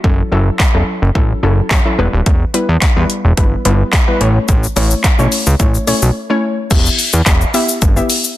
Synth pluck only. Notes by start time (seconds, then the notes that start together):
0.04 F#3 C#4 E4 A4
0.32 F#3 C#4 E4 A4
0.74 F#3 C#4 E4 A4
1.15 F#3 C#4 E4 A4
1.43 F#3 C#4 E4 A4
1.85 F#3 C#4 E4 A4
1.98 G3 B3 E4 B4
2.54 G3 B3 E4 B4
2.96 G3 B3 E4 B4
3.37 G3 B3 E4 B4
3.65 G3 B3 E4 B4
4.08 G3 B3 E4 B4
4.21 A3 C#4 E4 C#5
4.76 A3 C#4 E4 C#5
5.19 A3 C#4 E4 C#5
5.59 A3 C#4 E4 C#5
5.87 A3 C#4 E4 C#5
6.30 A3 C#4 E4 C#5
6.71 B3 E4 G4 E5
7.54 B3 E4 G4 E5
7.96 B3 E4 G4 E5